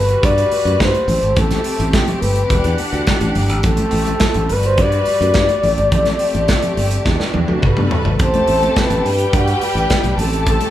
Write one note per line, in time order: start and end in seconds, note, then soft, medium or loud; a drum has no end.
0.00 0.14 G1 medium
0.00 1.07 G3 medium
0.00 1.08 F#4 medium
0.00 0.26 B4 loud
0.00 1.07 B4 medium
0.09 closed hi-hat soft
0.23 0.43 G2 medium
0.23 0.81 D5 loud
0.23 kick loud
0.23 closed hi-hat medium
0.38 closed hi-hat soft
0.51 open hi-hat medium
0.51 muted conga soft
0.65 0.75 F#2 medium
0.65 closed hi-hat soft
0.65 high conga soft
0.80 0.90 G2 medium
0.80 1.41 C5 medium
0.80 kick loud
0.80 snare medium
0.80 closed hi-hat medium
0.80 muted conga soft
0.94 closed hi-hat soft
0.94 high conga medium
1.08 1.18 A1 medium
1.08 2.50 A3 medium
1.08 2.50 C4 medium
1.08 4.47 G4 medium
1.08 open hi-hat medium
1.08 low conga medium
1.23 1.33 G#1 medium
1.23 closed hi-hat soft
1.36 1.57 A1 medium
1.36 1.96 A4 loud
1.36 kick loud
1.36 closed hi-hat medium
1.36 muted conga soft
1.36 low conga medium
1.51 snare soft
1.51 closed hi-hat soft
1.51 high conga medium
1.64 open hi-hat medium
1.79 2.00 A1 loud
1.79 closed hi-hat soft
1.79 high conga medium
1.93 2.23 G4 medium
1.93 kick loud
1.93 snare loud
1.93 closed hi-hat medium
1.93 muted conga soft
2.07 closed hi-hat soft
2.07 low conga medium
2.22 2.42 G1 medium
2.22 2.80 B4 loud
2.22 open hi-hat medium
2.22 muted conga soft
2.36 closed hi-hat medium
2.50 2.60 E1 medium
2.50 3.63 E3 medium
2.50 3.63 D4 medium
2.50 3.63 F#5 medium
2.50 kick loud
2.50 closed hi-hat medium
2.50 muted conga soft
2.64 2.75 E2 loud
2.64 closed hi-hat soft
2.78 open hi-hat medium
2.78 muted conga soft
2.93 3.03 D2 medium
2.93 closed hi-hat soft
2.93 high conga medium
3.07 3.68 G4 medium
3.07 kick loud
3.07 snare medium
3.07 closed hi-hat medium
3.07 muted conga soft
3.21 3.31 A1 medium
3.21 closed hi-hat soft
3.21 high conga medium
3.35 3.49 G1 loud
3.35 open hi-hat medium
3.35 low conga medium
3.49 3.60 G#1 medium
3.49 closed hi-hat soft
3.63 3.84 A1 medium
3.63 4.49 A3 medium
3.63 4.50 C4 medium
3.63 4.54 A4 loud
3.63 kick loud
3.63 closed hi-hat medium
3.63 low conga medium
3.77 closed hi-hat soft
3.77 high conga medium
3.91 4.13 A1 medium
3.91 open hi-hat medium
3.91 muted conga soft
4.07 closed hi-hat soft
4.07 high conga medium
4.20 kick loud
4.20 snare loud
4.20 closed hi-hat medium
4.20 muted conga soft
4.34 4.51 A1 loud
4.34 closed hi-hat soft
4.34 low conga medium
4.49 4.79 G1 medium
4.49 5.63 G3 medium
4.49 5.63 F#4 medium
4.49 5.63 B4 medium
4.49 4.68 B4 loud
4.49 open hi-hat medium
4.63 4.83 C5 loud
4.63 closed hi-hat soft
4.78 4.98 G2 loud
4.78 7.64 D5 loud
4.78 kick loud
4.78 closed hi-hat medium
4.78 muted conga soft
4.92 closed hi-hat soft
5.05 open hi-hat medium
5.05 muted conga soft
5.21 5.31 F#2 medium
5.21 closed hi-hat soft
5.21 high conga medium
5.34 5.45 G2 medium
5.34 kick loud
5.34 snare medium
5.34 closed hi-hat medium
5.34 muted conga soft
5.49 closed hi-hat soft
5.49 high conga medium
5.63 5.79 A1 medium
5.63 7.05 A3 medium
5.63 7.05 C4 medium
5.63 7.62 G4 medium
5.63 open hi-hat medium
5.63 muted conga soft
5.63 low conga medium
5.78 5.88 G#1 medium
5.78 closed hi-hat soft
5.92 6.12 A1 medium
5.92 kick loud
5.92 closed hi-hat medium
5.92 muted conga soft
5.92 low conga medium
6.05 snare soft
6.05 closed hi-hat soft
6.05 high conga medium
6.19 open hi-hat medium
6.19 muted conga soft
6.34 6.55 A1 medium
6.34 closed hi-hat soft
6.34 high conga medium
6.48 kick loud
6.48 snare medium
6.48 closed hi-hat medium
6.48 muted conga soft
6.62 closed hi-hat soft
6.62 low conga medium
6.77 6.97 G1 medium
6.77 open hi-hat medium
6.77 muted conga soft
6.91 closed hi-hat soft
7.05 7.16 E2 loud
7.05 7.63 E3 medium
7.05 7.62 D4 medium
7.05 8.19 F#4 medium
7.05 kick loud
7.05 snare medium
7.05 muted conga soft
7.20 snare medium
7.34 7.45 E2 medium
7.34 high tom medium
7.34 muted conga soft
7.48 7.59 D2 medium
7.48 high tom medium
7.48 high conga medium
7.62 7.73 G1 loud
7.62 8.19 G3 medium
7.62 8.20 A4 medium
7.62 8.20 B4 medium
7.62 kick medium
7.62 mid tom medium
7.62 muted conga soft
7.77 7.87 G2 medium
7.77 mid tom medium
7.77 high conga medium
7.91 floor tom loud
7.91 muted conga soft
7.91 low conga medium
8.05 8.16 G#1 medium
8.05 floor tom medium
8.19 8.39 A1 medium
8.19 9.05 A3 medium
8.19 9.05 C4 medium
8.19 9.05 G4 medium
8.19 9.03 A4 medium
8.19 8.74 C5 loud
8.19 9.03 A5 medium
8.19 kick loud
8.19 closed hi-hat medium
8.34 closed hi-hat soft
8.34 high conga medium
8.47 8.68 A1 medium
8.47 open hi-hat medium
8.47 muted conga soft
8.63 closed hi-hat soft
8.63 high conga medium
8.76 9.37 B4 medium
8.76 kick loud
8.76 snare loud
8.76 closed hi-hat medium
8.90 9.01 A1 loud
8.90 closed hi-hat soft
8.90 low conga medium
9.04 9.24 G2 medium
9.04 10.18 G3 medium
9.04 10.16 G4 medium
9.04 10.18 G4 medium
9.04 10.18 B4 medium
9.04 10.16 G5 medium
9.04 open hi-hat medium
9.19 closed hi-hat soft
9.33 9.53 G2 loud
9.33 9.67 F#4 medium
9.33 kick loud
9.33 closed hi-hat medium
9.48 closed hi-hat soft
9.61 10.20 G4 loud
9.61 open hi-hat medium
9.61 muted conga soft
9.75 9.85 A1 medium
9.75 closed hi-hat soft
9.90 kick medium
9.90 snare loud
9.90 closed hi-hat medium
9.90 muted conga soft
10.04 10.14 B1 medium
10.04 closed hi-hat soft
10.04 high conga medium
10.18 10.58 A1 medium
10.18 10.70 A3 medium
10.18 10.70 C4 medium
10.18 10.70 G4 medium
10.18 10.70 A4 medium
10.18 10.46 A4 medium
10.18 10.70 A5 medium
10.18 open hi-hat medium
10.18 low conga medium
10.33 closed hi-hat soft
10.46 10.70 A4 loud
10.46 kick loud
10.46 closed hi-hat medium
10.61 closed hi-hat soft
10.61 high conga medium